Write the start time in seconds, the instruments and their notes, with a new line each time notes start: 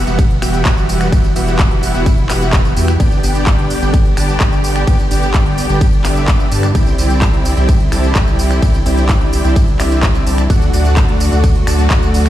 Already playing: string section E3 G3 B3 F#5
0.07 sub bass E1, supersaw synth B3 F#4 G4 E5 F#5, closed hi-hat, tambourine
0.19 kick, closed hi-hat, ride, tambourine
0.30 closed hi-hat
0.42 sub bass E1, supersaw synth B3 F#4 G4 E5 G5, finger snap, open hi-hat, tambourine
0.54 closed hi-hat, tambourine
0.65 sub bass E1, supersaw synth B3 F#4 G4 E5 F#5, kick, clap, closed hi-hat, ride, tambourine
0.77 closed hi-hat, tambourine
0.89 open hi-hat, tambourine
1.01 finger snap, closed hi-hat, tambourine
1.12 sub bass E1, supersaw synth B3 F#4 G4 E5 F#5, string section E4, kick, closed hi-hat, ride, tambourine
1.24 closed hi-hat, tambourine
1.36 sub bass E1, supersaw synth B3 F#4 G4 E5 F#5, open hi-hat, tambourine
1.48 closed hi-hat, tambourine
1.59 kick, clap, closed hi-hat, ride, tambourine
1.71 sub bass E1, supersaw synth B3 F#4 G4 E5 F#5, closed hi-hat
1.83 open hi-hat, tambourine
1.94 sub bass E1, supersaw synth B3 F#4 G4 E5 F#5, closed hi-hat, tambourine
2.06 kick, closed hi-hat, ride, tambourine
2.18 closed hi-hat
2.30 sub bass E1, supersaw synth B3 F#4 G4 E5 F#5, finger snap, clap, open hi-hat, tambourine
2.41 closed hi-hat, tambourine
2.53 kick, clap, closed hi-hat, ride, tambourine
2.65 closed hi-hat, tambourine
2.77 sub bass E2, supersaw synth B3 F#4 G4 E5 G5, open hi-hat, tambourine
2.88 finger snap, closed hi-hat, tambourine
3.00 sub bass G1, string section D3 G3 B3 G4, supersaw synth B3 D4 G4 D5 G5, kick, closed hi-hat, ride, tambourine
3.12 closed hi-hat, tambourine
3.23 sub bass G1, supersaw synth B3 D4 G4 D5 G5, open hi-hat, tambourine
3.35 closed hi-hat, tambourine
3.47 kick, clap, closed hi-hat, ride, tambourine
3.59 sub bass G1, supersaw synth B3 D4 G4 D5 G5, closed hi-hat
3.70 open hi-hat, tambourine
3.82 sub bass G1, supersaw synth B3 D4 G4 D5 G5, closed hi-hat, tambourine
3.94 kick, closed hi-hat, ride, tambourine
4.05 closed hi-hat
4.17 sub bass G1, supersaw synth B3 D4 G4 D5 A5, finger snap, open hi-hat, tambourine
4.29 closed hi-hat, tambourine
4.40 sub bass G1, supersaw synth B3 D4 G4 D5 G5, kick, clap, closed hi-hat, ride, tambourine
4.52 closed hi-hat, tambourine
4.64 open hi-hat, tambourine
4.76 finger snap, closed hi-hat, tambourine
4.87 sub bass G1, supersaw synth B3 D4 G4 D5 G5, kick, closed hi-hat, ride, tambourine
4.99 closed hi-hat, tambourine
5.11 sub bass G1, supersaw synth B3 D4 G4 D5 G5, open hi-hat, tambourine
5.23 closed hi-hat, tambourine
5.34 kick, clap, closed hi-hat, ride, tambourine
5.46 sub bass G1, supersaw synth B3 D4 G4 D5 G5, closed hi-hat
5.58 open hi-hat, tambourine
5.69 sub bass G1, supersaw synth B3 D4 G4 D5 G5, closed hi-hat, tambourine
5.81 kick, closed hi-hat, ride, tambourine
5.93 closed hi-hat
6.04 sub bass G1, supersaw synth B3 D4 G4 D5 E5, finger snap, clap, open hi-hat, tambourine
6.16 closed hi-hat, tambourine
6.28 kick, clap, closed hi-hat, ride, tambourine
6.40 closed hi-hat, tambourine
6.51 sub bass G2, supersaw synth B3 D4 G4 D5 A5, open hi-hat, tambourine
6.63 finger snap, closed hi-hat, tambourine
6.75 sub bass C2, supersaw synth C4 E4 G4 D5 G5, string section C4 E4, kick, closed hi-hat, ride, tambourine
6.87 closed hi-hat, tambourine
6.98 sub bass C2, supersaw synth C4 E4 G4 D5 G5, open hi-hat, tambourine
7.10 closed hi-hat, tambourine
7.22 kick, clap, closed hi-hat, ride, tambourine
7.33 sub bass C2, supersaw synth C4 E4 G4 D5 G5, closed hi-hat
7.45 open hi-hat, tambourine
7.57 sub bass C2, supersaw synth C4 E4 G4 D5 G5, closed hi-hat, tambourine
7.69 kick, closed hi-hat, ride, tambourine
7.80 closed hi-hat
7.92 sub bass C2, supersaw synth C4 E4 G4 D5 A5, finger snap, open hi-hat, tambourine
8.04 closed hi-hat, tambourine
8.15 sub bass C2, supersaw synth C4 E4 G4 D5 G5, kick, clap, closed hi-hat, ride, tambourine
8.27 closed hi-hat, tambourine
8.39 open hi-hat, tambourine
8.51 finger snap, closed hi-hat, tambourine
8.62 sub bass C2, supersaw synth C4 E4 G4 D5 G5, string section D4, kick, closed hi-hat, ride, tambourine
8.74 closed hi-hat, tambourine
8.86 sub bass C2, supersaw synth C4 E4 G4 D5 G5, open hi-hat, tambourine
8.98 closed hi-hat, tambourine
9.09 kick, clap, closed hi-hat, ride, tambourine
9.21 sub bass C2, supersaw synth C4 E4 G4 D5 G5, closed hi-hat
9.33 open hi-hat, tambourine
9.44 sub bass C2, supersaw synth C4 E4 G4 D5 G5, closed hi-hat, tambourine
9.56 kick, closed hi-hat, ride, tambourine
9.68 closed hi-hat
9.80 sub bass C2, supersaw synth C4 E4 G4 D5 E5, finger snap, clap, open hi-hat, tambourine
9.91 closed hi-hat, tambourine
10.03 kick, clap, closed hi-hat, ride, tambourine
10.15 closed hi-hat, tambourine
10.26 sub bass C2, supersaw synth C4 E4 G4 D5 A5, open hi-hat, tambourine
10.38 finger snap, closed hi-hat, tambourine
10.50 sub bass D2, string section D3 F#3 A3 F#4, supersaw synth A3 D4 F#4 D5 F#5, kick, closed hi-hat, ride, tambourine
10.62 closed hi-hat, tambourine
10.73 sub bass D2, supersaw synth A3 D4 F#4 D5 F#5, open hi-hat, tambourine
10.85 closed hi-hat, tambourine
10.97 kick, clap, closed hi-hat, ride, tambourine
11.09 sub bass D2, supersaw synth A3 D4 F#4 D5 F#5, closed hi-hat
11.20 open hi-hat, tambourine
11.32 sub bass D2, supersaw synth A3 D4 F#4 D5 F#5, closed hi-hat, tambourine
11.44 kick, closed hi-hat, ride, tambourine
11.55 closed hi-hat
11.67 sub bass D2, supersaw synth A3 D4 F#4 D5 A5, finger snap, open hi-hat, tambourine
11.79 closed hi-hat, tambourine
11.90 sub bass D2, supersaw synth A3 D4 F#4 D5 F#5, kick, clap, closed hi-hat, ride, tambourine
12.02 closed hi-hat, tambourine
12.14 open hi-hat, tambourine
12.26 finger snap, closed hi-hat